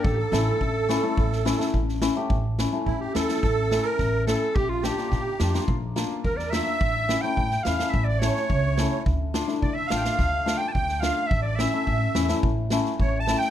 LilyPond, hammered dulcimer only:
\new Staff \with { instrumentName = "Hammered dulcimer" } { \time 4/4 \tempo 4 = 106 r8 <a cis' e'>16 r8. <cis' e'>16 <a cis' e'>16 r8 <cis' e'>16 <a cis' e'>16 r8 <cis' e'>16 <a cis' g'>16 | r8 <cis' e'>16 <a cis' e'>16 r8 <cis' e'>16 <a cis' e'>16 r8 <a cis' e'>16 r8. <a cis' e'>16 r16 | r8 <d' f'>16 <bes d' f'>16 r8 <d' f'>16 <bes d' f'>16 r8 <bes d' f'>16 r8. <bes d' f'>16 r16 | r8 <cis' e'>16 <a cis' e'>16 r8 <cis' e'>16 <a cis' e'>16 r8 <a cis' e'>16 r8. <a cis' e'>16 r16 |
r8 <d' f'>16 <a d' e'>16 r8 <d' f'>16 <a d' f'>16 r8 <a d' f'>16 r8. <a d' f'>16 r16 | r8 <cis' e'>16 <a cis' e'>16 r8 <cis' e'>16 <a cis' e'>16 r8 <a cis' e'>16 r8. <a cis' e'>16 r16 | }